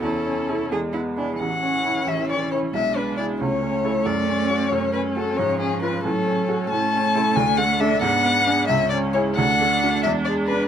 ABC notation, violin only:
X:1
M:6/8
L:1/8
Q:3/8=90
K:A
V:1 name="Violin"
A3 z3 | f3 e d c | e B d c3 | d3 c B A |
c G B A3 | a3 g f e | f3 e d c | f3 e d B |]